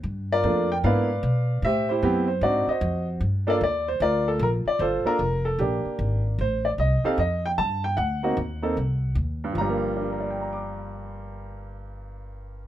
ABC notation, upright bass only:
X:1
M:4/4
L:1/8
Q:"Swing" 1/4=151
K:Gm
V:1 name="Upright bass" clef=bass
G,,2 F,,2 ^G,,2 =B,,2 | A,,2 ^F,,2 _A,, z =F,,2 | G,,2 E,,2 D,,2 B,,, z | G,,, z F,,,2 B,,, z _A,,,2 |
A,,,2 C,, z F,,2 G,,2 | D,,2 E,,2 C,,2 E,,2 | G,,,8- | G,,,8 |]